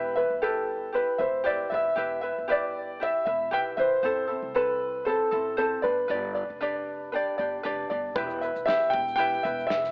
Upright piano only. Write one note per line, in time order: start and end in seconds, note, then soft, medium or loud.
0.00 0.13 B4 medium
0.17 0.41 B4 medium
0.43 0.96 A4 medium
0.95 1.21 B4 medium
1.21 1.47 C5 medium
1.46 1.70 D5 medium
1.74 2.46 E5 medium
2.52 3.03 D5 medium
3.03 3.50 E5 medium
3.53 3.59 G5 medium
3.79 4.58 C5 medium
4.56 5.09 B4 medium
5.06 5.57 A4 medium
5.58 5.64 A4 medium
5.84 7.60 B4 medium
8.15 8.63 B4 medium
8.66 8.93 E5 medium
8.90 9.14 G5 medium
9.16 9.70 G5 loud
9.67 9.92 E5 medium